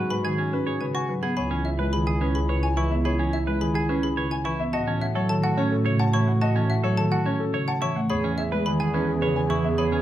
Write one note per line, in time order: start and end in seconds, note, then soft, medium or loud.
0.00 1.21 G#2 loud
0.00 1.19 F#4 medium
0.00 0.15 B4 medium
0.00 0.15 F#5 medium
0.10 0.29 G#3 medium
0.10 0.29 B4 medium
0.10 0.29 B5 loud
0.25 0.43 D#3 medium
0.25 0.43 G#4 medium
0.25 0.43 G#5 medium
0.38 0.57 C#4 medium
0.38 0.57 G#5 medium
0.53 0.71 C#4 medium
0.53 0.71 B4 loud
0.67 0.85 G#4 medium
0.67 0.85 C#5 medium
0.81 0.99 C#3 medium
0.81 0.99 B4 medium
0.81 0.99 G#5 medium
0.95 1.13 F#4 medium
0.95 1.13 G#5 loud
0.95 1.13 C#6 medium
1.09 1.27 F#3 medium
1.09 1.27 B4 medium
1.23 1.41 B3 medium
1.23 1.36 G#4 medium
1.23 1.41 F#5 medium
1.23 1.36 B5 medium
1.37 4.58 C#2 medium
1.37 4.55 E4 medium
1.37 1.55 G#4 medium
1.37 1.55 C#5 medium
1.37 1.55 B5 medium
1.51 1.69 E3 medium
1.51 1.69 C#4 loud
1.51 1.69 G#5 medium
1.65 1.83 E5 medium
1.79 1.97 G#3 loud
1.79 1.97 B4 medium
1.79 1.97 B4 loud
1.93 2.11 D#3 medium
1.93 2.11 G#4 medium
1.93 2.11 B5 loud
2.07 2.25 G#4 medium
2.07 2.25 G#5 medium
2.21 2.39 C#4 medium
2.21 2.39 B4 medium
2.35 2.53 G#4 medium
2.35 2.53 B5 medium
2.49 2.67 C#3 medium
2.49 2.67 B4 medium
2.49 2.67 C#5 medium
2.63 2.81 G#5 medium
2.63 2.81 G#5 loud
2.77 2.95 E3 medium
2.77 2.95 E4 medium
2.77 2.95 B4 medium
2.77 2.95 C#6 medium
2.91 3.09 B3 medium
2.91 3.09 E5 medium
3.05 3.23 G#4 medium
3.05 3.23 C#5 loud
3.05 3.23 B5 medium
3.19 3.37 E3 medium
3.19 3.37 C#4 loud
3.19 3.37 G#5 medium
3.33 3.51 E5 medium
3.47 3.65 G#3 loud
3.47 3.65 B4 loud
3.47 3.65 B4 medium
3.61 3.79 D#3 medium
3.61 3.79 G#4 medium
3.61 3.79 B5 loud
3.75 3.93 G#4 medium
3.75 3.93 G#5 medium
3.89 4.07 C#4 medium
3.89 4.07 C#4 loud
3.89 4.07 B4 medium
4.03 4.21 G#4 medium
4.03 4.21 B5 medium
4.17 4.35 C#3 medium
4.17 4.35 B4 medium
4.17 4.35 C#5 medium
4.31 4.49 G#5 medium
4.31 4.49 G#5 loud
4.45 4.63 E3 medium
4.45 4.63 E4 medium
4.45 4.64 B4 medium
4.45 4.63 C#6 medium
4.59 4.77 B3 medium
4.59 4.78 E5 medium
4.73 7.94 A2 medium
4.73 4.91 F#4 medium
4.73 7.92 F#4 medium
4.73 4.92 D#5 loud
4.73 4.91 A5 medium
4.87 5.05 E3 medium
4.87 5.06 C#4 loud
4.87 5.06 A5 medium
5.01 5.20 E5 medium
5.01 5.19 F#5 medium
5.15 5.34 F#3 loud
5.15 5.34 A4 medium
5.15 5.34 C#5 loud
5.29 5.48 D#3 medium
5.29 5.48 A4 medium
5.29 5.48 A5 loud
5.44 5.62 F#4 medium
5.44 5.62 F#5 medium
5.44 5.62 A5 medium
5.57 5.76 C#4 loud
5.57 5.76 C#4 medium
5.57 5.76 C#5 loud
5.72 5.90 A4 medium
5.86 6.04 C#3 medium
5.86 6.04 C#5 loud
6.00 6.18 F#5 medium
6.00 6.18 A5 loud
6.13 6.32 E3 medium
6.13 6.32 E4 medium
6.13 6.32 C#5 medium
6.13 6.32 C#6 loud
6.27 6.46 A3 medium
6.27 6.46 F#5 medium
6.41 6.60 F#4 medium
6.41 6.60 D#5 loud
6.41 6.60 A5 medium
6.56 6.74 E3 medium
6.56 6.74 C#4 loud
6.56 6.74 A5 medium
6.70 6.88 E5 medium
6.70 6.88 F#5 medium
6.84 7.02 F#3 loud
6.84 7.02 A4 loud
6.84 7.02 C#5 loud
6.97 7.16 D#3 medium
6.97 7.16 A4 medium
6.97 7.16 A5 loud
7.12 7.30 F#4 medium
7.12 7.30 F#5 medium
7.12 7.30 A5 medium
7.26 7.44 C#4 loud
7.26 7.44 C#4 medium
7.26 7.44 C#5 loud
7.40 7.58 A4 medium
7.54 7.72 C#3 medium
7.54 7.72 C#5 medium
7.68 7.86 F#5 medium
7.68 7.86 A5 loud
7.82 8.00 E3 medium
7.82 8.00 E4 loud
7.82 8.00 C#5 medium
7.82 8.00 C#6 loud
7.96 8.14 A3 medium
7.96 8.14 F#5 medium
8.10 10.02 E2 loud
8.10 10.02 G#4 medium
8.10 8.28 G#4 medium
8.10 8.28 C#5 loud
8.10 8.28 B5 medium
8.24 8.42 E3 medium
8.24 8.42 C#4 loud
8.24 8.42 G#5 medium
8.38 8.56 E5 medium
8.52 8.70 G#3 loud
8.52 8.70 B4 medium
8.52 8.70 B4 loud
8.66 8.84 D#3 medium
8.66 8.84 G#4 medium
8.66 8.84 B5 loud
8.80 8.98 G#4 medium
8.80 8.98 G#5 medium
8.94 9.12 C#4 loud
8.94 9.12 C#4 medium
8.94 9.12 B4 loud
9.08 9.26 G#4 medium
9.22 9.40 C#3 medium
9.22 9.40 B4 medium
9.22 9.40 C#5 medium
9.36 9.54 G#5 loud
9.50 9.68 E3 medium
9.50 9.68 E4 medium
9.50 9.68 B4 medium
9.50 9.68 C#6 medium
9.64 9.82 B3 medium
9.64 9.82 E5 medium
9.78 9.96 G#4 medium
9.78 9.96 C#5 medium
9.78 9.96 B5 medium
9.92 10.02 E3 medium
9.92 10.02 C#4 loud
9.92 10.02 G#5 medium